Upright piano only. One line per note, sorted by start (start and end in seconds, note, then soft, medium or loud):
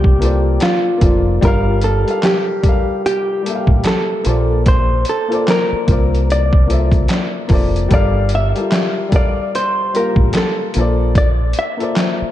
0.00 0.19 A#3 medium
0.00 0.21 F4 medium
0.00 0.22 A4 medium
0.00 0.23 C5 medium
0.00 0.25 D5 medium
0.19 0.70 A#3 medium
0.19 0.71 F4 medium
0.19 0.72 A4 medium
0.19 0.72 C5 medium
0.25 0.73 D5 medium
0.98 1.27 A#3 medium
0.98 1.28 F4 medium
0.98 1.29 A4 medium
1.03 1.30 C5 medium
1.03 1.30 D5 medium
1.41 1.79 G3 loud
1.41 1.80 F4 medium
1.41 1.79 G4 medium
1.45 1.81 A#4 medium
1.45 1.82 F5 loud
2.04 2.41 G3 medium
2.04 2.42 G4 medium
2.04 2.43 A4 medium
2.09 2.44 A#4 medium
2.09 2.44 F5 medium
2.62 3.13 G3 medium
2.62 3.14 G4 medium
2.62 3.15 A4 medium
2.67 3.16 A#4 medium
2.67 3.17 F5 medium
3.43 4.18 G3 medium
3.43 4.19 G4 medium
3.43 4.20 A4 medium
3.47 4.21 A#3 medium
3.47 3.55 E5 medium
3.55 4.25 F5 medium
4.23 5.06 A#3 medium
4.23 5.07 F4 medium
4.23 5.07 A4 medium
4.28 5.08 C5 medium
4.28 5.09 D5 medium
5.28 5.66 A#3 medium
5.28 5.66 F4 medium
5.28 5.67 A4 medium
5.33 5.68 C5 medium
5.33 5.68 D5 medium
5.86 6.38 A#3 medium
5.86 6.38 F4 medium
5.86 6.39 A#4 medium
5.91 6.40 C5 medium
5.91 6.40 D5 medium
6.67 7.18 A#3 medium
6.67 7.19 F4 medium
6.67 7.20 A4 medium
6.71 7.20 C5 medium
6.71 7.21 E5 medium
7.48 7.76 A#3 medium
7.48 7.77 F4 medium
7.48 7.78 A4 medium
7.52 7.79 C5 medium
7.52 7.79 D5 medium
7.89 8.27 G3 medium
7.89 8.28 G4 medium
7.89 8.29 A4 medium
7.93 8.29 A#4 medium
7.93 8.30 F5 loud
8.54 8.91 G3 medium
8.54 8.91 G4 medium
8.54 8.92 A4 medium
8.58 8.93 F4 medium
8.58 8.93 A#4 medium
9.09 9.61 G3 medium
9.09 9.62 G4 medium
9.09 9.62 A4 medium
9.13 9.63 A#4 medium
9.13 9.64 F5 medium
9.94 10.68 G3 medium
9.94 10.70 F4 medium
9.94 10.69 G4 medium
9.98 10.70 A#3 medium
9.98 10.71 F5 medium
10.75 11.56 A#3 medium
10.75 11.56 F4 medium
10.75 11.57 A4 medium
10.79 11.58 C5 medium
10.79 11.59 D5 medium
11.77 12.14 A#3 medium
11.77 12.15 F4 medium
11.77 12.16 A4 medium
11.82 12.17 C5 medium
11.82 12.17 D5 medium